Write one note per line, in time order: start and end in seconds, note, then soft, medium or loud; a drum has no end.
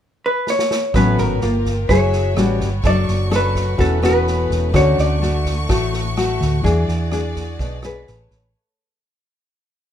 0.26 0.49 B4 medium
0.47 0.95 C#5 medium
0.47 snare soft
0.59 snare soft
0.71 snare medium
0.93 1.16 A1 medium
0.93 1.40 A2 soft
0.93 1.38 F#3 soft
0.93 1.41 A3 medium
0.93 1.38 B3 soft
0.93 1.41 C#4 medium
0.93 1.39 C#4 medium
0.93 1.41 F#4 medium
0.93 1.41 B4 medium
0.93 1.19 B4 medium
0.93 kick medium
0.93 cross-stick medium
0.93 snare soft
1.17 1.40 G#1 medium
1.17 1.89 A#4 medium
1.17 snare soft
1.41 1.86 G1 medium
1.41 1.72 A#3 soft
1.41 1.73 F4 soft
1.41 1.90 F4 medium
1.41 1.89 G4 medium
1.41 1.89 A#4 medium
1.41 snare soft
1.65 kick soft
1.65 snare soft
1.89 2.33 F#1 medium
1.89 2.35 F#3 medium
1.89 2.33 A3 medium
1.89 2.33 E4 soft
1.89 2.83 F#4 medium
1.89 2.37 G#4 medium
1.89 2.33 G#4 medium
1.89 2.56 C#5 medium
1.89 2.37 E5 medium
1.89 kick medium
1.89 cross-stick medium
1.89 snare soft
2.12 snare soft
2.36 2.59 A1 medium
2.36 2.68 G3 soft
2.36 2.84 G3 medium
2.36 2.84 B3 medium
2.36 2.69 C#4 soft
2.36 2.69 F#4 medium
2.36 2.84 C#5 medium
2.36 cross-stick medium
2.36 snare soft
2.60 2.83 G1 medium
2.60 kick soft
2.60 snare soft
2.83 3.06 F#1 medium
2.83 3.77 F#3 medium
2.83 6.61 A3 medium
2.83 3.28 D4 medium
2.83 4.72 F#4 medium
2.83 3.28 A4 medium
2.83 3.34 D5 medium
2.83 3.78 C#6 medium
2.83 kick medium
2.83 snare soft
3.08 3.75 F#1 medium
3.08 snare soft
3.31 3.63 C#4 medium
3.31 3.63 D4 soft
3.31 3.64 A4 medium
3.31 cross-stick medium
3.31 snare soft
3.36 3.83 B4 medium
3.55 kick soft
3.55 snare soft
3.78 4.46 E1 medium
3.78 4.71 E3 soft
3.78 3.99 B3 soft
3.78 3.99 C#4 medium
3.78 4.73 C#4 medium
3.78 3.99 F#4 medium
3.78 4.04 A4 medium
3.78 4.73 B4 medium
3.78 kick medium
3.78 snare soft
4.02 4.70 B3 medium
4.02 4.71 C#4 medium
4.02 4.71 F#4 medium
4.02 4.76 B4 medium
4.02 cross-stick medium
4.02 snare soft
4.27 snare soft
4.50 4.73 E1 medium
4.50 kick soft
4.50 snare soft
4.73 4.96 D2 medium
4.73 5.67 D3 medium
4.73 5.18 A3 medium
4.73 5.18 C#4 medium
4.73 8.04 F#4 medium
4.73 5.18 F#4 medium
4.73 5.00 C#5 medium
4.73 6.62 C#6 medium
4.73 kick medium
4.73 cross-stick medium
4.73 snare soft
4.98 5.66 D2 medium
4.98 8.05 D5 medium
4.98 snare soft
5.22 5.52 A3 medium
5.22 5.53 F#4 medium
5.22 snare soft
5.45 kick soft
5.45 snare soft
5.69 6.37 A1 medium
5.69 6.62 A2 medium
5.69 6.00 A3 medium
5.69 6.00 F#4 medium
5.69 kick medium
5.69 cross-stick medium
5.69 snare soft
5.93 snare soft
6.17 6.63 A3 soft
6.17 6.63 F#4 medium
6.17 cross-stick medium
6.17 snare soft
6.41 6.63 D2 medium
6.41 kick soft
6.41 snare soft
6.63 6.87 E2 medium
6.63 7.57 E3 soft
6.63 7.08 D4 medium
6.63 8.53 G#4 medium
6.63 7.08 G#4 medium
6.63 8.06 D5 medium
6.63 kick medium
6.63 snare soft
6.88 7.56 E2 medium
6.88 snare soft
7.11 7.80 D4 soft
7.11 7.80 G#4 medium
7.11 cross-stick medium
7.11 snare soft
7.36 kick soft
7.36 snare soft
7.59 8.04 B1 medium
7.59 8.05 B2 medium
7.59 kick medium
7.59 snare soft
7.82 8.52 C#4 medium
7.82 8.52 G#4 medium
7.82 8.52 B4 medium
7.82 cross-stick medium
7.82 snare soft
8.05 8.30 A1 medium
8.05 8.54 A3 medium
8.05 8.54 B4 medium
8.05 8.54 C#5 medium
8.05 snare soft
8.31 8.53 A1 medium
8.31 kick soft
8.31 snare soft